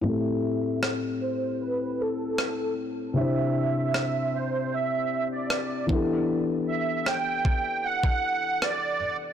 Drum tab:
SD |----r-------r---|----r-------r---|----r-------r---|
BD |----------------|--------------o-|------o--o------|